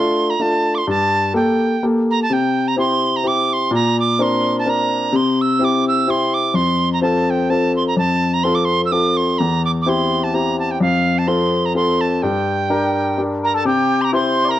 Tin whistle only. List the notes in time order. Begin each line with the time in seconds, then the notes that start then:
Already playing: C6
0.30 A#5
0.42 A5
0.75 C6 D6
0.90 A5
1.36 G5
2.11 A#5
2.23 A5
2.33 G5
2.68 A#5
2.79 C6
3.16 A#5
3.27 D6
3.53 C6
3.75 A#5
4.00 D6
4.22 C6
4.59 A5
4.69 A#5
5.16 C6
5.41 E6
5.64 D6
5.88 E6
6.10 C6
6.34 D6
6.55 C6
6.93 A#5
7.02 A5
7.30 G5
7.50 A5
7.76 C6
7.88 A#5
7.98 A5
8.34 A#5
8.44 C6
8.55 D6
8.65 C6
8.85 E6
8.92 D6
9.17 C6
9.38 A#5
9.65 D6
9.82 D6
9.89 C6
10.24 A5
10.35 A#5
10.59 A5
10.71 G5
10.82 F5
11.19 A5
11.28 C6
11.65 A#5
11.76 C6
12.01 A5
12.22 G5
13.45 A#5
13.56 A5
13.67 G5
14.01 A#5 C6
14.14 C6
14.51 A#5